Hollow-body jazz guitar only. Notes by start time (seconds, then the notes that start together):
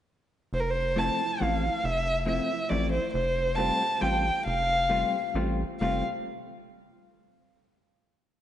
0.96 F3 A3 C4 E4
1.40 F3 A3 C4 E4
2.26 F3 A3 C4 E4
2.70 F3 A3 C4 E4
3.58 G3 A3 C4 F4
4.01 G3 A3 C4 F4
4.90 G3 A3 C4 F4
5.35 G3 A3 C4 F4
5.81 G3 A3 C4 F4